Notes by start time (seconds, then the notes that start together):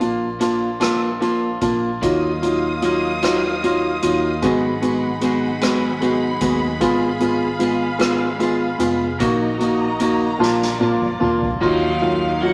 Already playing: A#1
0.00 A#3 D4 F4, closed hi-hat
0.39 F3 A#3 D4 F4, cross-stick, closed hi-hat
0.80 A#2 F3 A#3 D4 F4, cross-stick, closed hi-hat
1.20 F3 A#3 D4 F4, closed hi-hat
1.61 A#1 A#3 D4 F4, kick, closed hi-hat
2.00 D#2 D#3 F#3 A#3 D#4 F4 F5 D#6, kick, closed hi-hat
2.42 F#3 A#3 D#4 F4, closed hi-hat
2.82 F#3 A#3 D#4 F4, closed hi-hat
3.23 D#3 F#3 A#3 D#4 F4, cross-stick, closed hi-hat
3.63 F#3 A#3 D#4 F4, closed hi-hat
4.02 D#2 F#3 A#3 D#4 F4, closed hi-hat
4.42 G#1 G#2 D#3 F#3 G#3 B3 D#4 F#4 G#4 F#5 B5, kick, closed hi-hat
4.82 F#3 G#3 B3 D#4 F#4 G#4, closed hi-hat
5.21 F#3 G#3 B3 D#4 F#4 G#4, closed hi-hat
5.61 G#2 D#3 F#3 G#3 B3 D#4 F#4 G#4, cross-stick, closed hi-hat
6.00 F#3 G#3 B3 D#4 F#4 G#4, closed hi-hat
6.41 D#2 F#3 G#3 B3 D#4 F#4 G#4, kick, closed hi-hat
6.80 G#1 G#3 B3 F4 G#4 F5, kick, closed hi-hat
7.20 G#3 B3 F4 G#4, closed hi-hat
7.24 B3
7.59 G#3 B3 F4, closed hi-hat
7.63 G#4
7.99 G#3 B3 F4 G#4, cross-stick, closed hi-hat
8.39 G#3 B3 F4 G#4, closed hi-hat
8.78 F1 G#3 B3 F4 G#4, closed hi-hat
8.83 B3
9.19 A#1 A#2 D#3 A#3 D#4 F#4 D#5 A#5, kick, closed hi-hat
9.59 A#3 D#4 F#4, closed hi-hat
10.00 D#3 A#3 D#4 F#4, closed hi-hat
10.39 A#1 A#2 F3 A#3 D4 F4 D5, snare
10.62 snare
10.80 F3 A#3 D4 F4, high tom
11.01 mid tom
11.20 A#1 A#3 D4 F4, mid tom
11.42 floor tom
11.59 D#2 D#3 F#3 A#3 D#4 F4 F5, kick, crash
12.01 F#3 D#4 F4, ride
12.41 F#3 A#3 D#4 F4 F#5, ride